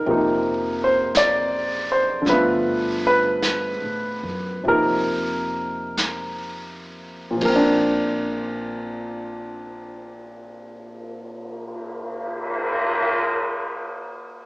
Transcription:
Already playing: grand piano A#4
0.06 upright bass F2, grand piano C3 F3 A#3, brush sweep
0.11 grand piano D#4
0.84 grand piano C5
1.15 grand piano D5, brush sweep, snare, hi-hat pedal
1.92 grand piano C5
2.22 upright bass G2, grand piano D3 F3
2.26 grand piano A3 B4, brush sweep, snare
2.32 grand piano B3 F4
3.07 grand piano B4
3.42 brush sweep, snare, hi-hat pedal
3.82 upright bass A2
4.23 upright bass F#2
4.64 upright bass F2, grand piano C3 F3, brush sweep
4.68 grand piano A#3 D#4 A#4
5.97 brush sweep, snare, hi-hat pedal
7.31 grand piano A#2
7.37 grand piano F3
7.41 upright bass A#1, grand piano A#3, kick, ride
7.45 grand piano C4 A#4
7.56 grand piano D4
8.43 cymbal swell

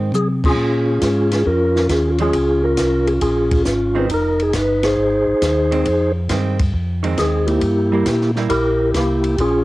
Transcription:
Already playing: tonewheel organ G#2, hollow-body jazz guitar D#3 G#3 C4
0.12 tonewheel organ C3 G#4, hi-hat pedal, high tom
0.44 tonewheel organ C#4 F4 G#4, kick, crash
0.56 tonewheel organ A#2
1.01 tonewheel organ G#2, kick, snare, hi-hat pedal, ride
1.31 snare, ride
1.45 tonewheel organ F2 C#4 F4 A#4, kick
1.76 snare
1.89 tonewheel organ D#2 G#4, kick, snare, hi-hat pedal, ride
2.09 tonewheel organ F4
2.18 hollow-body jazz guitar F3 G#3 C#4, tonewheel organ C#4 G#4, ride
2.23 tonewheel organ F4
2.33 tonewheel organ C#2, kick, ride
2.64 tonewheel organ C#4 F4 A#4
2.77 tonewheel organ C2, kick, snare, hi-hat pedal, ride
3.07 tonewheel organ G#4, ride
3.21 tonewheel organ A#1 C#4 F4 G#4, kick, ride
3.51 kick, ride
3.65 tonewheel organ G#1, kick, snare, hi-hat pedal
3.95 hollow-body jazz guitar D#3 G#3 C4
3.99 tonewheel organ B4
4.09 tonewheel organ F1 D#4, kick, ride
4.14 tonewheel organ A#4
4.39 tonewheel organ G#4, ride
4.53 tonewheel organ G1 B4, kick, snare, hi-hat pedal, ride
4.83 tonewheel organ D#4 G#4 C5, snare, ride
4.97 tonewheel organ G#1
5.27 tonewheel organ G#1
5.42 tonewheel organ D#2, kick, snare, hi-hat pedal, ride
5.71 hollow-body jazz guitar D#3 G#3 C4, ride
5.85 tonewheel organ F2, kick, ride
6.29 tonewheel organ G2, hollow-body jazz guitar D#3 G#3 C4, kick, snare, hi-hat pedal, ride
6.59 kick, ride
6.74 tonewheel organ F2, kick
7.03 hollow-body jazz guitar D#3 G#3 C4, ride
7.18 tonewheel organ D#2 G#4, kick, snare, hi-hat pedal, ride
7.47 tonewheel organ A#3 E4 G4, ride
7.61 tonewheel organ G2, kick, ride
7.92 hollow-body jazz guitar G3 A#3 E4
8.06 tonewheel organ A#2, kick, snare, hi-hat pedal, ride
8.21 snare
8.36 hollow-body jazz guitar G3 A#3 E4, snare
8.49 tonewheel organ A#1 E4 G4 A#4, kick, ride
8.94 tonewheel organ C2 A#3 E4 G4, kick, snare, hi-hat pedal, ride
9.24 ride
9.38 tonewheel organ A#1 C#4 F4 G#4, kick, ride

